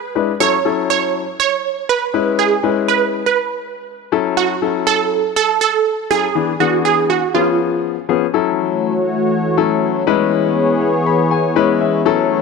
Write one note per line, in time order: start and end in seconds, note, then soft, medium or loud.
0.00 0.43 B4 loud
0.15 0.30 G#3 medium
0.15 0.30 D4 medium
0.15 0.31 E4 medium
0.15 0.31 B4 medium
0.40 0.55 F#3 medium
0.40 0.55 C#4 medium
0.40 0.55 E4 medium
0.40 0.55 A4 medium
0.40 0.89 C#5 loud
0.65 1.23 F#3 medium
0.65 1.23 C#4 medium
0.65 1.23 E4 medium
0.65 1.23 A4 medium
0.90 1.39 C#5 loud
1.40 1.86 C#5 loud
1.89 2.35 B4 medium
2.14 2.54 G#3 medium
2.14 2.54 C#4 medium
2.14 2.54 E4 medium
2.14 2.54 B4 medium
2.39 2.90 G#4 medium
2.63 3.21 G#3 medium
2.63 3.21 C#4 medium
2.63 3.21 E4 medium
2.63 3.21 B4 medium
2.88 3.25 B4 medium
3.26 3.97 B4 medium
4.12 4.52 F#3 medium
4.12 4.52 C#4 medium
4.12 4.53 E4 medium
4.12 4.53 A4 medium
4.37 4.88 F#4 medium
4.62 5.19 F#3 medium
4.62 5.19 C#4 medium
4.62 5.20 E4 medium
4.62 5.20 A4 medium
4.87 5.35 A4 loud
5.36 5.60 A4 loud
5.61 6.12 A4 loud
6.10 6.25 F#3 medium
6.10 6.25 C#4 medium
6.10 6.26 E4 medium
6.10 6.62 G#4 loud
6.10 6.26 A4 medium
6.35 6.50 E3 medium
6.35 6.50 B3 medium
6.35 6.50 D4 medium
6.35 6.50 G#4 medium
6.60 7.18 E3 medium
6.60 7.18 B3 medium
6.60 7.18 D4 medium
6.60 6.86 F#4 medium
6.60 7.18 G#4 medium
6.85 7.08 G#4 medium
7.10 7.35 F#4 medium
7.34 7.94 F3 medium
7.34 7.95 B3 medium
7.34 7.95 C#4 medium
7.34 8.05 F4 medium
7.34 7.95 G#4 medium
8.09 8.24 F3 medium
8.09 8.24 B3 medium
8.09 8.24 C#4 medium
8.09 8.24 G#4 medium
8.33 12.42 E3 medium
8.33 8.91 F#3 medium
8.33 10.06 A3 medium
8.33 8.91 C#4 medium
8.33 8.91 E4 medium
8.33 10.06 F#4 medium
8.33 8.92 A4 medium
8.33 10.06 C#5 medium
9.57 10.01 F#3 medium
9.57 10.01 C#4 medium
9.57 10.01 E4 medium
9.57 10.01 A4 medium
10.07 10.87 G#3 medium
10.07 12.04 B3 medium
10.07 10.87 C#4 medium
10.07 10.87 E4 medium
10.07 12.04 G#4 medium
10.07 10.87 B4 loud
10.07 12.04 C#5 medium
11.06 11.29 B5 medium
11.31 11.77 G#5 medium
11.56 11.99 G#3 medium
11.56 11.99 C#4 medium
11.56 11.99 E4 medium
11.56 11.99 B4 loud
11.81 12.27 E5 medium
12.05 12.42 F#3 medium
12.05 12.42 A3 medium
12.05 12.42 C#4 medium
12.05 12.42 E4 medium
12.05 12.42 F#4 medium
12.05 12.42 A4 loud
12.05 12.42 C#5 medium